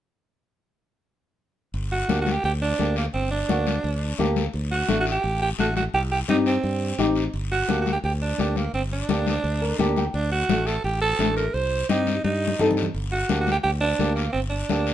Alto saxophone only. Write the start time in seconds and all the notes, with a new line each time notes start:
1.92 F#4
2.21 F#4
2.33 G4
2.45 G4
2.62 D4
2.98 A#3
3.14 C4
3.31 D4
4.71 F#4
5.00 F#4
5.12 G4
5.42 G4
5.60 F#4
5.77 F#4
5.94 G4
6.12 G4
6.30 D#4
6.47 C4
7.52 F#4
7.81 F#4
7.93 G4
8.05 G4
8.22 D4
8.57 A#3
8.75 C4
8.93 D4
10.14 D4
10.32 F#4
10.67 A4
10.85 G4
11.02 A4
11.37 A#4
11.54 C5
11.89 D#4
12.24 D#4
13.12 F#4
13.41 F#4
13.52 G4
13.63 G4
13.81 D4
14.15 A#3
14.33 C4
14.50 D4